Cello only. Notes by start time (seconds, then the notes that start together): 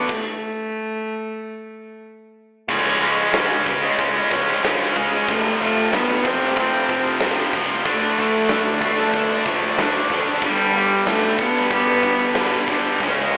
Already playing: B3
0.10 A3
2.70 G#3
3.65 G#3
4.32 F3
4.97 G#3
5.29 A3
5.60 A3
5.93 B3
6.24 C4
6.58 C4
7.89 A3
8.84 A3
9.46 F3
10.14 F3
10.44 G3
11.08 A3
11.40 B3
11.71 B3
13.00 G#3